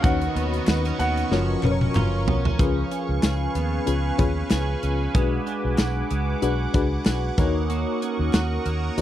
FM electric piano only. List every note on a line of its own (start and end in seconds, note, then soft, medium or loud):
0.04 1.10 C#4 medium
0.04 1.10 D#4 medium
0.04 1.11 F#4 medium
0.04 1.11 B4 medium
0.04 1.11 C#5 medium
1.31 1.58 C#4 medium
1.31 1.59 F4 medium
1.31 1.59 F#4 medium
1.31 1.59 A#4 medium
1.31 1.59 C#5 medium
1.64 2.44 C#4 medium
1.64 2.45 A#4 medium
1.64 1.71 B4 medium
1.71 2.48 C#5 medium
2.59 3.66 C#4 medium
2.59 3.66 F4 medium
2.59 3.66 G#4 medium
2.59 3.66 B4 medium
3.86 4.14 C#4 medium
3.86 4.14 F4 medium
3.86 4.14 G#4 medium
3.86 4.14 B4 medium
4.18 4.99 C#4 medium
4.18 4.99 F4 medium
4.18 5.00 G#4 medium
4.18 5.00 B4 loud
5.14 6.21 D4 medium
5.14 6.21 F#4 medium
5.14 6.21 G#4 medium
5.14 6.22 B4 loud
6.42 6.69 D4 medium
6.42 6.69 F#4 medium
6.42 6.69 G#4 medium
6.42 6.70 B4 medium
6.74 7.38 D4 loud
6.74 7.37 F#4 medium
6.74 7.38 G#4 medium
6.74 7.38 B4 loud
7.38 8.44 D#4 loud
7.38 8.44 F#4 medium
7.38 8.45 A#4 medium
7.38 8.45 C#5 loud
8.98 9.01 D#4 medium
8.98 9.01 F#4 medium
8.98 9.01 A#4 medium